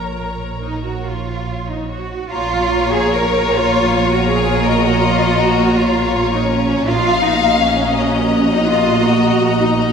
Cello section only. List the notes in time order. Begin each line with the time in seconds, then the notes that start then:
Already playing: A#2
0.62 D#4
0.85 F#4
1.05 F4
1.68 D#4
1.89 F#4
2.30 F4
2.93 G#4
3.13 A#4
3.52 F4
4.09 F#4
4.28 G#4
4.64 A#4
4.84 F#4
5.02 F4
5.39 F#4
5.78 F4
6.33 D#4
6.50 C#4
6.87 F4
7.24 D#4
7.60 C#4
8.52 D#4
8.69 F4
9.05 F#4
9.59 D#4
9.77 D#4